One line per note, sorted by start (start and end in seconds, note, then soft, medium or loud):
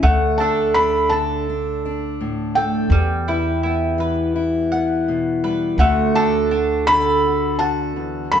0.00 2.87 D2 medium
0.00 2.91 A3 medium
0.00 0.11 E4 medium
0.00 0.11 E5 medium
0.00 0.40 F#5 medium
0.04 2.91 D2 medium
0.38 0.74 D4 medium
0.38 0.75 D4 medium
0.38 1.11 A4 medium
0.38 2.95 F#5 medium
0.38 0.76 A5 medium
0.74 2.99 D4 medium
0.74 1.48 D4 medium
0.74 1.12 B5 loud
1.09 2.91 D3 medium
1.09 2.55 A4 medium
1.09 2.59 A5 medium
1.49 1.84 D4 medium
1.85 2.92 D4 medium
2.21 2.92 A2 medium
2.55 2.88 A3 medium
2.55 2.99 A4 medium
2.55 3.95 G5 medium
2.90 5.74 E2 medium
2.90 5.75 E2 medium
2.90 5.79 G3 medium
3.28 3.62 E4 medium
3.28 4.34 E4 medium
3.28 3.99 B4 medium
3.63 4.72 B3 medium
3.63 5.86 E4 medium
3.98 5.74 E3 medium
3.98 5.43 B4 medium
4.36 5.75 E4 medium
4.72 5.76 B3 medium
4.72 5.87 F#5 medium
5.08 5.75 B2 medium
5.44 5.80 G3 medium
5.44 5.87 B4 medium
5.78 8.40 D2 medium
5.78 7.95 D2 medium
5.78 6.87 D3 medium
5.78 8.40 A3 medium
5.78 6.14 F#4 medium
5.78 6.16 F#5 medium
6.15 6.51 D4 medium
6.15 6.51 F#4 medium
6.15 6.86 A4 medium
6.15 7.59 F#5 medium
6.15 6.89 A5 loud
6.51 8.40 D4 medium
6.51 7.23 F#4 medium
6.87 8.40 D3 medium
6.87 8.31 A4 medium
6.87 7.55 B5 loud
7.25 7.58 F#4 medium
7.59 8.40 F#4 medium
7.59 8.40 F#5 medium
7.59 8.27 A5 medium
7.96 8.32 E2 medium
8.32 8.40 F#2 medium
8.32 8.40 A4 medium
8.32 8.40 B5 loud